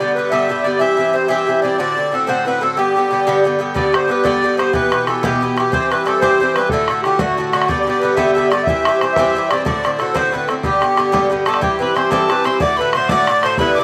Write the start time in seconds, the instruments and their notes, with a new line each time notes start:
Already playing: accordion D5
0.00 bouzouki G2 D3 B3 G4
0.15 bouzouki G2 D3 B3, accordion B4
0.19 bouzouki G4
0.30 bouzouki G2 D3 B3 G4, accordion E5
0.49 bouzouki G2 D3 B3 G4
0.63 bouzouki G2 D3 B3 G4, accordion D5
0.79 bouzouki G2 E3 C4 G4, accordion E5
0.97 bouzouki G2 E3 C4 G4
1.13 bouzouki G2 E3 C4 G4, accordion C5
1.28 bouzouki G2 E3 C4 G4, accordion E5
1.47 bouzouki G2 E3 C4 G4
1.62 bouzouki G2 E3 C4 G4, accordion D5
1.78 bouzouki A2 D3 C4 F#4, accordion D5
1.97 bouzouki A2 D3 C4 F#4
2.11 bouzouki A2 D3 C4 F#4, accordion A4
2.27 bouzouki A2 D3 C4 F#4, accordion C5
2.45 bouzouki A2 D3 C4 F#4, accordion B4
2.61 bouzouki A2 D3 C4 F#4, accordion A4
2.76 bouzouki G2 D3 B3 G4, accordion G4
2.96 bouzouki G2 D3 B3 G4
3.11 bouzouki G2 D3 B3 G4
3.27 bouzouki G2 D3 B3 G4
3.44 bouzouki G2 D3 B3 G4
3.59 bouzouki G2 D3 B3 G4
3.74 bouzouki G2 D3 B3 G4, accordion D5, bodhran
3.92 bouzouki G2 D3 B3 G4, accordion C5, bodhran
4.08 bouzouki G2 D3 B3 G4, accordion B4
4.24 bouzouki G2 D3 B3 G4, accordion D5, bodhran
4.34 bodhran
4.42 bouzouki G2 D3 B3 G4, bodhran
4.57 bouzouki G2 D3 B3 G4, accordion C5, bodhran
4.73 bouzouki B2 E3 B3 G4, accordion B4, bodhran
4.90 bouzouki B2 E3 B3 G4, bodhran
5.06 bouzouki B2 E3 B3 G4, accordion A4, bodhran
5.23 bouzouki B2 E3 B3 G4, accordion G4, bodhran
5.33 bodhran
5.41 bouzouki B2 E3 B3 G4, bodhran
5.56 bouzouki B2 E3 B3 G4, accordion G4, bodhran
5.72 bouzouki G2 E3 C4 G4, accordion C5, bodhran
5.90 bouzouki G2 E3 C4 G4, accordion B4, bodhran
6.05 bouzouki G2 E3 C4 G4, accordion A4, bodhran
6.21 bouzouki G2 E3 C4 G4, accordion C5, bodhran
6.39 bouzouki G2 E3 C4 G4, bodhran
6.54 bouzouki G2 E3 C4, accordion B4, bodhran
6.59 bouzouki G4
6.69 bouzouki A2, accordion A4, bodhran
6.73 bouzouki D3 A3 F#4
6.88 bouzouki A2 D3 A3, bodhran
6.92 bouzouki F#4
7.02 bouzouki A2 D3 A3, accordion G4, bodhran
7.07 bouzouki F#4
7.18 bouzouki A2 D3 A3 F#4, accordion F#4, bodhran
7.30 bodhran
7.37 bouzouki A2 D3 A3 F#4, bodhran
7.51 bouzouki A2 D3 A3, accordion F#4, bodhran
7.56 bouzouki F#4
7.62 bodhran
7.67 bouzouki G2 D3 B3 G4, accordion D5, bodhran
7.80 accordion D5
7.87 bouzouki G2 D3 B3 G4, accordion D5
8.00 bouzouki G2 D3, accordion B4
8.04 bouzouki B3 G4
8.15 bouzouki G2 D3 B3 G4, accordion E5, bodhran
8.27 bodhran
8.33 bouzouki G2 D3, accordion E5, bodhran
8.37 bouzouki B3 G4
8.48 bouzouki G2 D3, accordion D5, bodhran
8.53 bouzouki B3 G4
8.63 accordion E5, bodhran
8.68 bouzouki G2 E3 C4 G4
8.85 bouzouki G2 E3 C4 G4, bodhran
8.98 bouzouki G2, accordion C5, bodhran
9.02 bouzouki E3 C4 G4
9.13 accordion E5, bodhran
9.17 bouzouki G2 E3 C4 G4
9.26 bodhran
9.35 bouzouki G2 E3 C4 G4, bodhran
9.48 bouzouki G2 E3, accordion D5, bodhran
9.53 bouzouki C4 G4
9.64 bouzouki A2 D3 C4 F#4, accordion D5, bodhran
9.84 bouzouki A2 D3 C4 F#4, bodhran
9.98 bouzouki A2 D3 C4 F#4, accordion A4, bodhran
10.14 bouzouki A2 D3 C4 F#4, accordion C5, bodhran
10.25 bodhran
10.32 bouzouki A2 D3 C4 F#4, accordion B4, bodhran
10.47 bouzouki A2 D3 C4, accordion A4, bodhran
10.51 bouzouki F#4
10.63 bouzouki G2 D3 B3 G4, accordion G4, bodhran
10.81 bouzouki G2 D3 B3 G4, bodhran
10.97 bouzouki G2 D3 B3 G4, bodhran
11.12 bouzouki G2 D3 B3 G4, bodhran
11.22 bodhran
11.30 bouzouki G2 D3 B3 G4, bodhran
11.45 bouzouki G2 D3 B3 G4, accordion A4, tin whistle A5, bodhran
11.54 bodhran
11.61 bouzouki G2 E3 C4 G4, accordion G4, tin whistle G5, bodhran
11.79 bouzouki G2 E3 C4 G4, accordion B4, tin whistle B5, bodhran
11.94 bouzouki G2 E3 C4 G4, accordion C5, tin whistle C6, bodhran
12.11 bouzouki G2 E3 C4 G4, accordion A4, tin whistle A5, bodhran
12.29 bouzouki G2 E3 C4 G4, accordion B4, bodhran
12.44 bouzouki G2 E3 C4 G4, accordion C5, tin whistle C6, bodhran
12.60 bouzouki A2 D3 A3 F#4, accordion D5, tin whistle D6, bodhran
12.77 bouzouki A2 D3 A3, accordion B4, tin whistle B5, bodhran
12.82 bouzouki F#4
12.93 bouzouki A2 D3 A3, accordion C5, tin whistle C6, bodhran
12.97 bouzouki F#4
13.09 bouzouki A2 D3 A3 F#4, accordion D5, tin whistle D6, bodhran
13.27 bouzouki A2 D3 A3 F#4, bodhran
13.41 bouzouki A2 D3, accordion C5, tin whistle C6, bodhran
13.45 bouzouki A3 F#4
13.58 bouzouki G2 D3 B3 E4, accordion B4, tin whistle B5, bodhran
13.74 bouzouki G2, accordion D5, tin whistle D6, bodhran
13.79 bouzouki D3 B3 E4